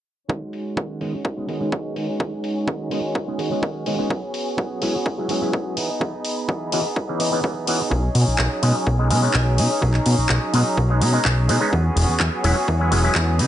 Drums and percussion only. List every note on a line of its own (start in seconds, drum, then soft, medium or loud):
0.29 kick loud
0.53 open hi-hat loud
0.77 kick loud
1.01 open hi-hat loud
1.25 kick loud
1.49 open hi-hat loud
1.72 kick loud
1.96 open hi-hat medium
2.20 kick loud
2.44 open hi-hat medium
2.68 kick loud
2.91 open hi-hat loud
3.15 kick loud
3.39 open hi-hat loud
3.63 kick loud
3.86 open hi-hat loud
4.10 kick loud
4.34 open hi-hat loud
4.58 kick loud
4.82 open hi-hat loud
5.06 kick loud
5.29 open hi-hat loud
5.53 kick loud
5.77 open hi-hat loud
6.01 kick loud
6.25 open hi-hat loud
6.49 kick loud
6.72 open hi-hat loud
6.96 kick loud
7.20 open hi-hat loud
7.44 kick loud
7.67 open hi-hat loud
7.91 kick loud
8.15 open hi-hat medium
8.15 tambourine medium
8.38 kick loud
8.38 clap loud
8.63 open hi-hat loud
8.87 kick loud
9.11 open hi-hat loud
9.34 kick loud
9.34 clap loud
9.58 open hi-hat loud
9.58 tambourine medium
9.82 kick loud
9.94 clap soft
10.06 open hi-hat medium
10.06 tambourine medium
10.29 kick loud
10.29 clap loud
10.54 open hi-hat medium
10.77 kick loud
10.90 tambourine soft
11.01 open hi-hat loud
11.25 kick loud
11.25 clap loud
11.49 open hi-hat medium
11.61 tambourine soft
11.73 kick loud
11.84 tambourine soft
11.96 open hi-hat medium
11.96 tambourine medium
12.20 kick loud
12.20 clap loud
12.44 open hi-hat loud
12.44 tambourine medium
12.56 tambourine soft
12.68 kick loud
12.80 tambourine soft
12.92 open hi-hat loud
12.92 tambourine medium
13.04 tambourine soft
13.15 kick loud
13.15 clap loud
13.29 tambourine soft
13.39 open hi-hat medium
13.39 tambourine medium